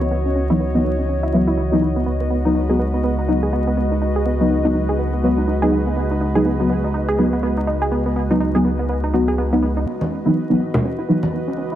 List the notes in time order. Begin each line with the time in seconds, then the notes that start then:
Already playing: C#2 E3 F#4 C#5 D#5
0.01 B3
0.11 B3
0.26 C#4
0.36 C#4
0.50 E3 F#3 B3 D#4 E4
0.60 B3
0.74 E3 F#3 B3 D#4
0.84 B3
0.99 C#4
1.09 C#4
1.23 E4
1.33 E3 F#3 B3 E4
1.47 E4
1.58 E4
1.72 E3 F#3 B3 D#4 F#4
1.82 E4
1.96 B3
2.06 C#2 G#3 B3 B4
2.21 B3
2.31 B3
2.45 F#3 B3 D#4
2.55 D#4
2.69 F#3 B3 D#4 G#4
2.79 B3
2.94 B3
3.04 B3
3.18 D#4
3.28 F#3 B3 D#4
3.43 G#4
3.53 B3
3.67 B3
3.77 B3
3.92 D#4
4.02 D#4
4.16 G#4
4.26 B3
4.40 F#3 B3 D#4
4.50 B3
4.64 F#3 B3 D#4
4.75 D#4
4.89 G#4
4.99 B3
5.13 B3
5.23 F#3 B3 F#4
5.38 D#4
5.48 D#4
5.62 F#3 B3 D#4 G#4
5.72 B3
5.87 B3
5.96 B3
6.11 D#4
6.21 D#4
6.35 F#3 B3 D#4 G#4
6.45 B3
6.60 F#3 B3 D#4
6.70 B3
6.84 D#4
6.94 D#4
7.08 G#4
7.18 F#3 B3 D#4
7.33 B3
7.43 B3
7.57 D#4
7.67 D#4
7.82 G#4
7.92 B3
8.06 B3
8.16 B3
8.30 F#3 B3 D#4
8.40 D#4
8.55 F#3 B3 D#4 G#4
8.65 B3
8.79 B3
8.89 B3
9.04 D#4
9.14 F#3 B3 D#4 F#4
9.28 G#4
9.38 B3
9.52 F#3 B3 D#4
9.63 B3
9.77 D#4
9.87 C#2 E3 B3 F#4 B4 D#5
10.01 C#4, high conga
10.11 C#4
10.25 E3 F#3 B3 D#4 E4
10.36 B3
10.50 E3 F#3 B3 D#4
10.60 G#1 B3
10.74 C#4, low conga
10.84 C#4
10.99 E4
11.09 B1 E3 F#3 B3 D#4
11.23 G#1 B3, high conga
11.33 B3
11.48 C#2 C#4
11.57 C#4
11.72 E4